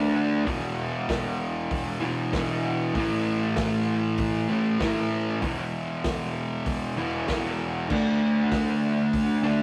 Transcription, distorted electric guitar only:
Already playing: D3 A3 D4
0.45 E2 B2 E3
2.00 E2 B2 E3
2.33 E2 B2 E3
2.94 A2 E3 A3
4.49 A2 E3 A3
4.79 A2 E3 A3
5.42 E2 B2 E3
6.97 E2 B2 E3
7.28 E2 B2 E3
7.90 D3 A3 D4
9.43 D3 A3 D4

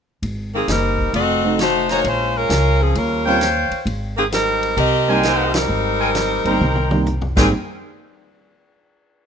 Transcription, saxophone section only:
0.54 D#3 A#3 C4 G#4
0.69 G3 C4 D#4 A#4
1.14 C4 F#4 A4 D#5
1.61 A3 D#4 F#4 C5
1.90 A#3 D#4 F#4 C#5
2.06 G#3 C#4 F4 C5
2.36 G#3 C#4 F4 A#4
2.81 F3 C4 C#4 G#4
2.97 G3 C#4 F4 A#4
4.17 D#3 A#3 C4 G#4
4.32 G3 C4 D#4 A#4
4.77 C4 G4 A#4 D#5
5.25 A#3 D#4 G4 C5
5.55 G3 C4 D#4 A#4
7.37 D#3 A#3 C4 G#4

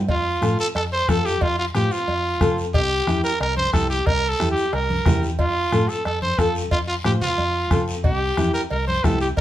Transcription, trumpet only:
0.10 F4
0.60 A4
0.76 A4
0.92 C5
1.09 A4
1.26 G4
1.42 F4
1.59 F4
1.75 G4
1.92 F4
2.74 G4
3.24 A#4
3.41 A#4
3.57 C5
3.73 A4
3.90 G4
4.06 A#4
4.29 A4
4.51 G4
4.73 A#4
5.40 F4
5.89 A4
6.06 A4
6.22 C5
6.39 A4
6.71 F4
6.88 F4
7.05 G4
7.21 F4
8.04 G4
8.54 A#4
8.71 A#4
8.87 C5
9.04 A4
9.21 G4
9.37 A#4

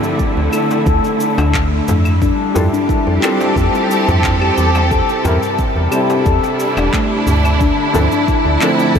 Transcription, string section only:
Already playing: D3 A3 E4
2.21 G3
2.67 G4
3.00 C4
3.19 A4
4.92 C3
5.47 G3
6.13 D4 E4
7.62 D3
8.56 A3

